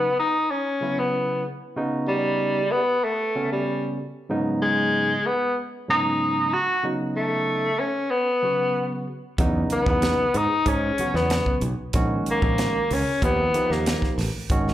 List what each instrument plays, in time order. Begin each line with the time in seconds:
Already playing: tenor saxophone B3
0.19 tenor saxophone D#4
0.51 tenor saxophone C#4
0.81 tine electric piano C#3 F#3 B3 E4
0.99 tenor saxophone B3
1.76 tine electric piano C#3 B3 D#4 F#4
2.08 tenor saxophone G3
2.72 tenor saxophone B3
3.04 tenor saxophone A3
3.35 tine electric piano C#3 B3 C#4 F#4
3.52 tenor saxophone G3
4.29 tine electric piano G#2 C#3 F#3 B3 D#4
4.62 tenor saxophone G#3
5.26 tenor saxophone B3
5.88 tine electric piano G#2 C#3 F#3 B3 C#4, tenor saxophone D#4
6.53 tenor saxophone F#4
6.84 tine electric piano C#3 F#3 B3 D#4
7.16 tenor saxophone A3
7.79 tenor saxophone C#4
8.10 tenor saxophone B3
8.43 tine electric piano C#3 F#3 B3 F#4
9.38 fingered electric bass E2, tine electric piano C#3 F#3 B3 D#4, kick, closed hi-hat
9.70 tenor saxophone B3, closed hi-hat
9.86 fingered electric bass E2, kick
10.02 snare, closed hi-hat
10.34 fingered electric bass G#2, tenor saxophone D#4, closed hi-hat
10.66 fingered electric bass G#2, tenor saxophone C#4, kick, closed hi-hat
10.98 tine electric piano C#3 F#3 B3 F#4, muted fingered electric bass stroke, closed hi-hat
11.14 fingered electric bass E2, tenor saxophone B3, snare
11.30 snare, closed hi-hat
11.46 kick
11.61 fingered electric bass B1, closed hi-hat
11.93 fingered electric bass A#1, tine electric piano D#3 G#3 C#4 F#4, kick, closed hi-hat
12.26 closed hi-hat
12.31 tenor saxophone A#3
12.42 fingered electric bass A#1, kick
12.58 snare, closed hi-hat
12.91 fingered electric bass C#2, tenor saxophone C#4, open hi-hat
13.22 fingered electric bass D#2, tine electric piano F3 A#3 D#4 G4, tenor saxophone B3, kick, closed hi-hat
13.54 tine electric piano F3 A#3 D#4 G4, muted fingered electric bass stroke, closed hi-hat
13.70 fingered electric bass D#2, tenor saxophone A#3, snare
13.86 snare, closed hi-hat
14.02 kick, snare
14.18 fingered electric bass A1, snare, open hi-hat
14.50 fingered electric bass G#1, tine electric piano D#3 G#3 C#4 F#4, kick, closed hi-hat
14.68 snare